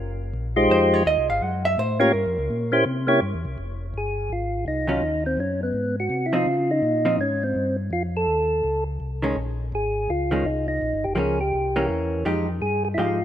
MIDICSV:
0, 0, Header, 1, 4, 480
1, 0, Start_track
1, 0, Key_signature, -4, "minor"
1, 0, Tempo, 361228
1, 933, Time_signature, 4, 2, 24, 8
1, 17601, End_track
2, 0, Start_track
2, 0, Title_t, "Tonewheel organ"
2, 0, Program_c, 0, 16
2, 748, Note_on_c, 0, 65, 64
2, 750, Note_on_c, 0, 56, 73
2, 753, Note_on_c, 0, 63, 66
2, 756, Note_on_c, 0, 67, 77
2, 756, Note_on_c, 0, 72, 86
2, 1371, Note_off_c, 0, 65, 0
2, 1372, Note_off_c, 0, 56, 0
2, 1373, Note_off_c, 0, 63, 0
2, 1375, Note_off_c, 0, 67, 0
2, 1375, Note_off_c, 0, 72, 0
2, 2652, Note_on_c, 0, 61, 75
2, 2654, Note_on_c, 0, 58, 83
2, 2655, Note_on_c, 0, 65, 79
2, 2657, Note_on_c, 0, 67, 76
2, 2666, Note_on_c, 0, 73, 85
2, 2818, Note_off_c, 0, 61, 0
2, 2819, Note_off_c, 0, 58, 0
2, 2820, Note_off_c, 0, 65, 0
2, 2821, Note_off_c, 0, 67, 0
2, 2825, Note_off_c, 0, 73, 0
2, 3614, Note_on_c, 0, 58, 86
2, 3618, Note_on_c, 0, 61, 75
2, 3623, Note_on_c, 0, 64, 81
2, 3626, Note_on_c, 0, 67, 73
2, 3630, Note_on_c, 0, 72, 94
2, 3777, Note_off_c, 0, 58, 0
2, 3779, Note_off_c, 0, 61, 0
2, 3781, Note_off_c, 0, 64, 0
2, 3783, Note_off_c, 0, 67, 0
2, 3785, Note_off_c, 0, 72, 0
2, 4079, Note_on_c, 0, 58, 89
2, 4091, Note_on_c, 0, 61, 67
2, 4095, Note_on_c, 0, 64, 76
2, 4096, Note_on_c, 0, 67, 76
2, 4101, Note_on_c, 0, 73, 79
2, 4249, Note_off_c, 0, 58, 0
2, 4254, Note_off_c, 0, 61, 0
2, 4257, Note_off_c, 0, 64, 0
2, 4257, Note_off_c, 0, 67, 0
2, 4260, Note_off_c, 0, 73, 0
2, 5283, Note_on_c, 0, 68, 66
2, 5747, Note_on_c, 0, 65, 73
2, 5752, Note_off_c, 0, 68, 0
2, 6178, Note_off_c, 0, 65, 0
2, 6216, Note_on_c, 0, 63, 82
2, 6514, Note_off_c, 0, 63, 0
2, 6530, Note_on_c, 0, 63, 72
2, 6961, Note_off_c, 0, 63, 0
2, 6994, Note_on_c, 0, 60, 83
2, 7167, Note_off_c, 0, 60, 0
2, 7178, Note_on_c, 0, 61, 68
2, 7450, Note_off_c, 0, 61, 0
2, 7481, Note_on_c, 0, 59, 75
2, 7917, Note_off_c, 0, 59, 0
2, 7971, Note_on_c, 0, 66, 96
2, 8318, Note_on_c, 0, 64, 68
2, 8328, Note_off_c, 0, 66, 0
2, 8427, Note_off_c, 0, 64, 0
2, 8441, Note_on_c, 0, 65, 105
2, 8916, Note_on_c, 0, 63, 110
2, 8925, Note_off_c, 0, 65, 0
2, 9519, Note_off_c, 0, 63, 0
2, 9577, Note_on_c, 0, 61, 84
2, 9878, Note_on_c, 0, 60, 87
2, 9880, Note_off_c, 0, 61, 0
2, 10318, Note_off_c, 0, 60, 0
2, 10534, Note_on_c, 0, 65, 98
2, 10668, Note_off_c, 0, 65, 0
2, 10852, Note_on_c, 0, 69, 98
2, 11747, Note_off_c, 0, 69, 0
2, 12955, Note_on_c, 0, 68, 86
2, 13422, Note_on_c, 0, 65, 86
2, 13435, Note_off_c, 0, 68, 0
2, 13897, Note_on_c, 0, 63, 84
2, 13909, Note_off_c, 0, 65, 0
2, 14177, Note_off_c, 0, 63, 0
2, 14193, Note_on_c, 0, 63, 96
2, 14673, Note_on_c, 0, 67, 84
2, 14688, Note_off_c, 0, 63, 0
2, 14796, Note_off_c, 0, 67, 0
2, 14815, Note_on_c, 0, 67, 68
2, 14854, Note_off_c, 0, 67, 0
2, 14861, Note_on_c, 0, 68, 86
2, 15139, Note_off_c, 0, 68, 0
2, 15157, Note_on_c, 0, 67, 72
2, 15767, Note_off_c, 0, 67, 0
2, 16766, Note_on_c, 0, 68, 92
2, 17054, Note_off_c, 0, 68, 0
2, 17070, Note_on_c, 0, 68, 96
2, 17120, Note_off_c, 0, 68, 0
2, 17198, Note_on_c, 0, 64, 62
2, 17261, Note_off_c, 0, 64, 0
2, 17268, Note_on_c, 0, 65, 89
2, 17601, Note_off_c, 0, 65, 0
2, 17601, End_track
3, 0, Start_track
3, 0, Title_t, "Hollow-body jazz guitar"
3, 0, Program_c, 1, 26
3, 948, Note_on_c, 1, 72, 77
3, 1244, Note_off_c, 1, 72, 0
3, 1244, Note_on_c, 1, 73, 93
3, 1410, Note_off_c, 1, 73, 0
3, 1423, Note_on_c, 1, 75, 98
3, 1711, Note_off_c, 1, 75, 0
3, 1723, Note_on_c, 1, 77, 82
3, 1906, Note_off_c, 1, 77, 0
3, 1906, Note_on_c, 1, 78, 96
3, 2190, Note_off_c, 1, 78, 0
3, 2195, Note_on_c, 1, 76, 104
3, 2363, Note_off_c, 1, 76, 0
3, 2381, Note_on_c, 1, 72, 96
3, 2661, Note_off_c, 1, 72, 0
3, 2667, Note_on_c, 1, 70, 86
3, 3745, Note_off_c, 1, 70, 0
3, 6478, Note_on_c, 1, 51, 47
3, 6489, Note_on_c, 1, 54, 57
3, 6494, Note_on_c, 1, 61, 65
3, 6498, Note_on_c, 1, 65, 58
3, 6646, Note_off_c, 1, 51, 0
3, 6652, Note_off_c, 1, 54, 0
3, 6654, Note_off_c, 1, 61, 0
3, 6656, Note_off_c, 1, 65, 0
3, 8407, Note_on_c, 1, 53, 56
3, 8411, Note_on_c, 1, 60, 59
3, 8420, Note_on_c, 1, 63, 68
3, 8571, Note_off_c, 1, 53, 0
3, 8573, Note_off_c, 1, 60, 0
3, 8578, Note_off_c, 1, 63, 0
3, 9370, Note_on_c, 1, 53, 54
3, 9376, Note_on_c, 1, 60, 58
3, 9387, Note_on_c, 1, 63, 56
3, 9533, Note_off_c, 1, 53, 0
3, 9537, Note_off_c, 1, 60, 0
3, 9542, Note_off_c, 1, 63, 0
3, 12258, Note_on_c, 1, 51, 53
3, 12271, Note_on_c, 1, 56, 62
3, 12276, Note_on_c, 1, 61, 73
3, 12421, Note_off_c, 1, 51, 0
3, 12427, Note_off_c, 1, 56, 0
3, 12430, Note_off_c, 1, 61, 0
3, 13703, Note_on_c, 1, 51, 57
3, 13716, Note_on_c, 1, 56, 61
3, 13723, Note_on_c, 1, 61, 55
3, 13865, Note_off_c, 1, 51, 0
3, 13872, Note_off_c, 1, 56, 0
3, 13875, Note_off_c, 1, 61, 0
3, 14823, Note_on_c, 1, 53, 55
3, 14840, Note_on_c, 1, 58, 60
3, 14849, Note_on_c, 1, 61, 66
3, 15110, Note_off_c, 1, 53, 0
3, 15119, Note_off_c, 1, 58, 0
3, 15123, Note_off_c, 1, 61, 0
3, 15626, Note_on_c, 1, 52, 58
3, 15631, Note_on_c, 1, 58, 64
3, 15631, Note_on_c, 1, 61, 65
3, 16253, Note_off_c, 1, 52, 0
3, 16255, Note_off_c, 1, 58, 0
3, 16255, Note_off_c, 1, 61, 0
3, 16281, Note_on_c, 1, 53, 54
3, 16285, Note_on_c, 1, 56, 58
3, 16288, Note_on_c, 1, 63, 66
3, 16292, Note_on_c, 1, 67, 68
3, 16561, Note_off_c, 1, 53, 0
3, 16563, Note_off_c, 1, 56, 0
3, 16565, Note_off_c, 1, 63, 0
3, 16567, Note_off_c, 1, 67, 0
3, 17246, Note_on_c, 1, 56, 49
3, 17248, Note_on_c, 1, 53, 53
3, 17258, Note_on_c, 1, 63, 48
3, 17267, Note_on_c, 1, 67, 55
3, 17525, Note_off_c, 1, 56, 0
3, 17526, Note_off_c, 1, 53, 0
3, 17531, Note_off_c, 1, 63, 0
3, 17535, Note_off_c, 1, 67, 0
3, 17601, End_track
4, 0, Start_track
4, 0, Title_t, "Tonewheel organ"
4, 0, Program_c, 2, 16
4, 0, Note_on_c, 2, 30, 82
4, 440, Note_off_c, 2, 30, 0
4, 446, Note_on_c, 2, 34, 84
4, 914, Note_off_c, 2, 34, 0
4, 918, Note_on_c, 2, 41, 94
4, 1389, Note_off_c, 2, 41, 0
4, 1399, Note_on_c, 2, 39, 86
4, 1559, Note_off_c, 2, 39, 0
4, 1559, Note_on_c, 2, 36, 50
4, 1722, Note_on_c, 2, 32, 67
4, 1724, Note_off_c, 2, 36, 0
4, 1873, Note_off_c, 2, 32, 0
4, 1882, Note_on_c, 2, 42, 85
4, 2349, Note_off_c, 2, 42, 0
4, 2366, Note_on_c, 2, 45, 88
4, 2830, Note_off_c, 2, 45, 0
4, 2842, Note_on_c, 2, 43, 84
4, 2997, Note_off_c, 2, 43, 0
4, 3003, Note_on_c, 2, 41, 68
4, 3163, Note_off_c, 2, 41, 0
4, 3171, Note_on_c, 2, 37, 67
4, 3315, Note_off_c, 2, 37, 0
4, 3324, Note_on_c, 2, 46, 89
4, 3787, Note_off_c, 2, 46, 0
4, 3798, Note_on_c, 2, 48, 91
4, 4263, Note_off_c, 2, 48, 0
4, 4279, Note_on_c, 2, 43, 91
4, 4433, Note_off_c, 2, 43, 0
4, 4437, Note_on_c, 2, 40, 68
4, 4586, Note_on_c, 2, 36, 68
4, 4597, Note_off_c, 2, 40, 0
4, 4739, Note_off_c, 2, 36, 0
4, 4755, Note_on_c, 2, 29, 76
4, 5220, Note_off_c, 2, 29, 0
4, 5233, Note_on_c, 2, 31, 74
4, 5699, Note_off_c, 2, 31, 0
4, 5711, Note_on_c, 2, 32, 74
4, 6178, Note_off_c, 2, 32, 0
4, 6195, Note_on_c, 2, 36, 72
4, 6660, Note_off_c, 2, 36, 0
4, 6666, Note_on_c, 2, 39, 72
4, 7135, Note_off_c, 2, 39, 0
4, 7139, Note_on_c, 2, 42, 68
4, 7612, Note_off_c, 2, 42, 0
4, 7616, Note_on_c, 2, 44, 68
4, 8091, Note_off_c, 2, 44, 0
4, 8104, Note_on_c, 2, 48, 72
4, 8575, Note_off_c, 2, 48, 0
4, 8590, Note_on_c, 2, 49, 76
4, 9059, Note_off_c, 2, 49, 0
4, 9067, Note_on_c, 2, 46, 81
4, 9538, Note_off_c, 2, 46, 0
4, 9547, Note_on_c, 2, 44, 66
4, 10018, Note_off_c, 2, 44, 0
4, 10037, Note_on_c, 2, 43, 77
4, 10504, Note_off_c, 2, 43, 0
4, 10508, Note_on_c, 2, 41, 82
4, 10979, Note_off_c, 2, 41, 0
4, 10985, Note_on_c, 2, 39, 82
4, 11458, Note_off_c, 2, 39, 0
4, 11478, Note_on_c, 2, 37, 70
4, 11946, Note_off_c, 2, 37, 0
4, 11959, Note_on_c, 2, 36, 75
4, 12427, Note_off_c, 2, 36, 0
4, 12440, Note_on_c, 2, 34, 79
4, 12908, Note_off_c, 2, 34, 0
4, 12920, Note_on_c, 2, 32, 71
4, 13389, Note_off_c, 2, 32, 0
4, 13409, Note_on_c, 2, 37, 74
4, 13874, Note_off_c, 2, 37, 0
4, 13881, Note_on_c, 2, 36, 82
4, 14351, Note_off_c, 2, 36, 0
4, 14375, Note_on_c, 2, 34, 77
4, 14527, Note_off_c, 2, 34, 0
4, 14535, Note_on_c, 2, 31, 54
4, 14689, Note_on_c, 2, 29, 59
4, 14692, Note_off_c, 2, 31, 0
4, 14837, Note_on_c, 2, 37, 77
4, 14838, Note_off_c, 2, 29, 0
4, 15310, Note_off_c, 2, 37, 0
4, 15326, Note_on_c, 2, 36, 72
4, 15795, Note_off_c, 2, 36, 0
4, 15796, Note_on_c, 2, 40, 86
4, 16270, Note_off_c, 2, 40, 0
4, 16282, Note_on_c, 2, 41, 86
4, 16754, Note_off_c, 2, 41, 0
4, 16766, Note_on_c, 2, 43, 74
4, 17237, Note_off_c, 2, 43, 0
4, 17243, Note_on_c, 2, 44, 65
4, 17601, Note_off_c, 2, 44, 0
4, 17601, End_track
0, 0, End_of_file